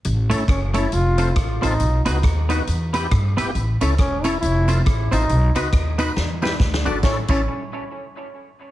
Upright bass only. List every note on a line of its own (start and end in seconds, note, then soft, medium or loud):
0.05 0.27 A1 loud
0.31 0.46 G1 medium
0.48 0.85 F#1 medium
0.92 1.29 F1 loud
1.36 1.58 A1 medium
1.63 1.77 A1 medium
1.80 2.02 B1 loud
2.06 2.21 C#2 medium
2.23 2.61 D#2 medium
2.67 3.04 E2 loud
3.12 3.33 G2 loud
3.37 3.52 G1 medium
3.55 3.77 A1 loud
3.81 3.96 C#2 medium
3.99 4.36 E1 medium
4.42 4.79 F1 loud
4.86 5.08 A1 medium
5.12 5.27 A1 medium
5.30 5.51 B1 loud
5.73 6.09 D#2 medium
6.17 6.53 E2 loud
6.60 6.82 D2 loud
6.86 7.01 G1 medium
7.03 7.17 A1 medium
7.29 7.45 A1 medium